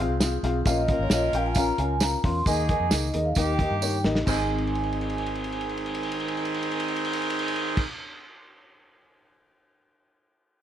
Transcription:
Already playing: G#3 C4 F4
0.00 C4 F4 G#4 F5
0.09 C2
0.20 C4 F4 G#4 F5, snare, closed hi-hat, tambourine
0.43 B1 C4 F4 G#4 F5, snare, closed hi-hat
0.65 A#1 A#2 C#4 F4 A#4 D#5 F5, kick, closed hi-hat, tambourine
0.88 C#4 F4 A#4 F5, kick, closed hi-hat
0.99 G#1 C#5
1.10 A#1 C#4 F4 A#4 D#5 F5, snare, closed hi-hat, tambourine
1.33 A#1 C#4 F4 A#4 F5 G5, closed hi-hat
1.46 G#5
1.55 C#4 F4 A#4 F5 A#5, kick, closed hi-hat, tambourine
1.78 C#2 C#4 F4 A#4 F5 G#5, closed hi-hat
2.00 C#4 F4 A#4 F5, snare, closed hi-hat, tambourine
2.24 E2 C#4 F4 A#4 F5 C6, kick, snare, open hi-hat
2.46 D#2 D#3 A#3 D#4 G#4 D#5 G#5, kick, closed hi-hat, tambourine
2.69 A#3 D#4 G#4 D#5 G#5, kick, closed hi-hat
2.80 F2
2.91 C#2 A#3 D#4 G#4 D#5, snare, closed hi-hat, tambourine
3.14 D#2 A#3 D#4 G#4 D#5, closed hi-hat
3.25 F5
3.35 D#2 D#3 A#3 D#4 G4 D#5, kick, closed hi-hat, tambourine
3.59 A#3 D#4 G4 D#5, kick, closed hi-hat
3.71 G2
3.82 A#3 D#4 G4 C#5, tambourine
4.04 A1 A#3 D#4 G4 D#5, snare
4.15 snare
4.25 G#1 D#3 C4 D#4 G#4 G#5, kick, crash, tambourine
4.29 D#5
4.50 crash
4.58 ride
4.67 crash
4.75 ride
4.83 crash
4.93 ride
5.01 crash
5.10 ride
5.18 crash
5.26 ride
5.35 crash
5.44 ride
5.52 crash
5.61 ride
5.69 crash
5.77 ride
5.86 crash
5.95 ride
6.03 crash
6.12 ride
6.20 crash
6.28 ride
6.37 crash
6.45 ride
6.54 crash
6.63 ride
6.71 crash
6.80 ride
6.88 crash
6.96 ride
7.05 crash
7.13 ride
7.22 crash
7.30 ride
7.39 crash
7.48 ride
7.56 crash
7.77 kick, crash

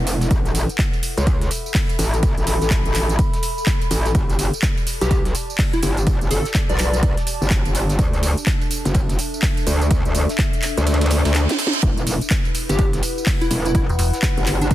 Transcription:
Already playing: E1 E4 B4 F#5
0.07 snare, open hi-hat, ride, tambourine
0.21 snare, closed hi-hat, tambourine
0.31 A1 A4, kick, closed hi-hat, ride, tambourine
0.45 closed hi-hat, tambourine
0.55 snare, open hi-hat, ride, tambourine
0.69 E5, closed hi-hat, tambourine
0.78 kick, snare, clap, closed hi-hat, ride, tambourine
0.94 ride, tambourine
1.00 B5, open hi-hat, ride, tambourine
1.17 C#2, snare, closed hi-hat, tambourine
1.27 kick, closed hi-hat, ride, tambourine
1.41 snare, closed hi-hat, tambourine
1.51 open hi-hat, ride, tambourine
1.66 tambourine
1.74 kick, snare, clap, closed hi-hat, open hi-hat, tambourine
1.89 closed hi-hat, ride, tambourine
1.99 A1, open hi-hat, ride, tambourine
2.14 closed hi-hat, tambourine
2.23 kick, closed hi-hat, ride, tambourine
2.38 A1, closed hi-hat, tambourine
2.47 A1, snare, open hi-hat, ride, tambourine
2.61 A1, snare, closed hi-hat, tambourine
2.70 kick, snare, clap, closed hi-hat, ride, tambourine
2.85 A1, closed hi-hat, tambourine
2.94 clap, open hi-hat, ride, tambourine
3.09 closed hi-hat, tambourine
3.19 kick, closed hi-hat, ride, tambourine
3.34 snare, closed hi-hat, tambourine
3.43 open hi-hat, ride, tambourine
3.58 tambourine
3.66 kick, snare, clap, closed hi-hat, ride, tambourine
3.82 closed hi-hat, ride, tambourine
3.91 A1, snare, open hi-hat, ride, tambourine
4.06 snare, closed hi-hat, tambourine
4.15 G1 G4, kick, closed hi-hat, ride, tambourine
4.25 D5
4.30 closed hi-hat, tambourine
4.39 snare, open hi-hat, ride, tambourine
4.54 closed hi-hat, tambourine
4.62 kick, snare, clap, closed hi-hat, ride, tambourine
4.77 ride, tambourine
4.83 A5, open hi-hat, ride, tambourine
5.01 B1 G4, snare, closed hi-hat, tambourine
5.11 kick, closed hi-hat, ride, tambourine
5.25 snare, closed hi-hat, tambourine
5.35 open hi-hat, ride, tambourine
5.50 tambourine
5.58 kick, snare, clap, closed hi-hat, open hi-hat, tambourine
5.73 E4, closed hi-hat, ride, tambourine
5.83 G1 E4, open hi-hat, ride, tambourine
5.97 closed hi-hat, tambourine
6.07 kick, closed hi-hat, ride, tambourine
6.21 G1, closed hi-hat, tambourine
6.31 G1 A4, open hi-hat, ride, tambourine
6.45 snare, closed hi-hat, tambourine
6.54 kick, snare, clap, closed hi-hat, ride, tambourine
6.69 B1 D5, closed hi-hat, tambourine
6.78 clap, open hi-hat, ride, tambourine
6.93 closed hi-hat, tambourine
7.03 kick, closed hi-hat, ride, tambourine
7.17 snare, closed hi-hat, tambourine
7.27 open hi-hat, ride, tambourine
7.41 G1, tambourine
7.50 kick, snare, clap, closed hi-hat, ride, tambourine
7.65 G1, closed hi-hat, ride, tambourine
7.75 snare, open hi-hat, ride, tambourine
7.89 snare, closed hi-hat, tambourine
7.99 D2 D4, kick, closed hi-hat, ride, tambourine
8.13 closed hi-hat, tambourine
8.19 A4, snare, open hi-hat, ride
8.23 tambourine
8.37 closed hi-hat, tambourine
8.46 kick, snare, clap, closed hi-hat, ride, tambourine
8.61 ride, tambourine
8.71 open hi-hat, ride, tambourine
8.75 E5
8.85 F#1, snare, closed hi-hat, tambourine
8.95 kick, closed hi-hat, ride, tambourine
9.09 snare, closed hi-hat, tambourine
9.19 open hi-hat, ride, tambourine
9.34 tambourine
9.42 kick, snare, clap, closed hi-hat, open hi-hat, tambourine
9.57 closed hi-hat, ride, tambourine
9.67 D2, open hi-hat, ride, tambourine
9.81 closed hi-hat, tambourine
9.91 kick, closed hi-hat, ride, tambourine
10.05 D2, closed hi-hat, tambourine
10.15 D2, open hi-hat, ride, tambourine
10.29 snare, closed hi-hat, tambourine
10.38 kick, snare, clap, closed hi-hat, ride, tambourine
10.53 closed hi-hat, tambourine
10.62 clap, open hi-hat, ride, tambourine
10.77 D2, closed hi-hat, tambourine
10.87 snare, closed hi-hat, ride, tambourine, reverse cymbal
10.94 snare, ride
11.01 snare, closed hi-hat, ride, tambourine
11.06 snare, ride
11.11 snare, open hi-hat, ride, tambourine
11.25 D2, snare, closed hi-hat, ride, tambourine
11.34 snare, clap, closed hi-hat, ride, tambourine
11.49 snare, closed hi-hat, ride, tambourine
11.59 snare, open hi-hat, ride, tambourine
11.67 snare
11.73 snare, closed hi-hat, ride, tambourine
11.83 E1 E4, kick, closed hi-hat, ride, tambourine
11.94 B4, closed hi-hat, tambourine
12.07 snare, open hi-hat, ride, tambourine
12.21 closed hi-hat, tambourine
12.30 kick, snare, clap, closed hi-hat, ride, tambourine
12.45 ride, tambourine
12.55 open hi-hat, ride, tambourine
12.68 G1 G4 F#5, snare, closed hi-hat, tambourine
12.79 kick, closed hi-hat, ride, tambourine
12.93 snare, closed hi-hat, tambourine
13.03 open hi-hat, ride, tambourine
13.18 tambourine
13.26 kick, snare, clap, closed hi-hat, open hi-hat, tambourine
13.41 E4, closed hi-hat, ride, tambourine
13.51 E1 E4, open hi-hat, ride, tambourine
13.65 E4, closed hi-hat, tambourine
13.75 kick, closed hi-hat, ride, tambourine
13.89 E1, closed hi-hat, tambourine
13.99 E1, open hi-hat, ride, tambourine
14.13 snare, closed hi-hat, tambourine
14.22 kick, snare, clap, closed hi-hat, ride, tambourine
14.37 G1, closed hi-hat, tambourine
14.46 clap, open hi-hat, ride, tambourine
14.61 D4, closed hi-hat, tambourine
14.71 D4, kick, closed hi-hat, ride, tambourine

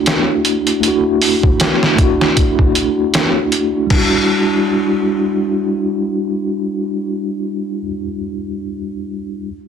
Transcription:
Already playing: A3 D4 E4 F#4
0.06 snare, closed hi-hat
0.45 closed hi-hat
0.67 closed hi-hat
0.81 A3 D4, closed hi-hat
0.85 E4 F#4
1.22 open hi-hat
1.43 kick
1.60 snare, closed hi-hat
1.83 snare
1.96 A3 D4, kick, closed hi-hat
2.01 E4 F#4
2.21 snare
2.37 kick, closed hi-hat
2.59 kick
2.75 closed hi-hat
3.14 snare, closed hi-hat
3.52 closed hi-hat
3.86 G3 D4, crash
3.91 E4, kick
3.97 F#4

